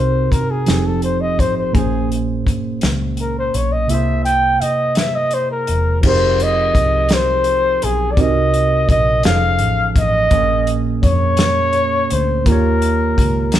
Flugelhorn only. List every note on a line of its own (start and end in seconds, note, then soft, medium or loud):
0.00 0.33 C5 medium
0.32 0.52 A#4 medium
0.51 0.88 G#4 medium
0.86 1.03 A4 medium
1.04 1.23 C5 medium
1.21 1.41 D#5 medium
1.40 1.56 C5 medium
1.57 1.76 C5 medium
1.75 2.10 G#4 medium
3.21 3.36 A#4 medium
3.39 3.57 C5 medium
3.56 3.74 C#5 medium
3.72 3.92 D#5 medium
3.90 4.24 E5 loud
4.25 4.63 G5 loud
4.61 4.99 D#5 medium
4.97 5.17 E5 medium
5.16 5.36 D#5 medium
5.34 5.51 C5 medium
5.52 6.00 A#4 medium
6.07 6.45 C5 medium
6.43 7.15 D#5 loud
7.14 7.86 C5 loud
7.84 8.14 G#4 medium
8.12 8.22 D5 medium
8.21 8.90 D#5 loud
8.91 9.23 D#5 loud
9.26 9.93 F5 loud
9.99 10.73 D#5 loud
11.04 12.14 C#5 loud
12.12 12.49 C5 medium
12.47 13.60 A#4 medium